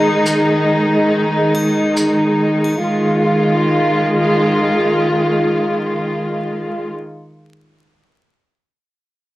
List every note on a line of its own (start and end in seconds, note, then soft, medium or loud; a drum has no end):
0.00 2.79 D#3 medium
0.00 2.79 G#3 medium
0.00 2.78 D#4 medium
0.26 maracas medium
1.55 triangle medium
1.97 maracas medium
2.64 triangle soft
2.83 6.90 D#3 medium
2.83 6.90 G#3 medium
2.83 6.90 F4 medium